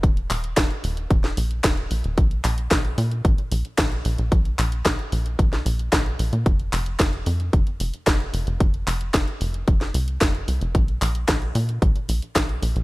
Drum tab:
HH |xxoxxxoxxxoxxxox|xxoxxxoxxxoxxxox|xxoxxxoxxxoxxxox|xxoxxxoxxxoxxxox|
CP |--x-x-------x---|--x-x-------x---|--x-x-------x---|--x-x-------x---|
SD |----o----o--o---|----o-------o---|----o----o--o---|----o-------o---|
BD |o---o---o---o---|o---o---o---o---|o---o---o---o---|o---o---o---o---|

HH |xxoxxxoxxxoxxxox|xxoxxxoxxxoxxxox|
CP |--x-x-------x---|--x-x-------x---|
SD |----o----o--o---|----o-------o---|
BD |o---o---o---o---|o---o---o---o---|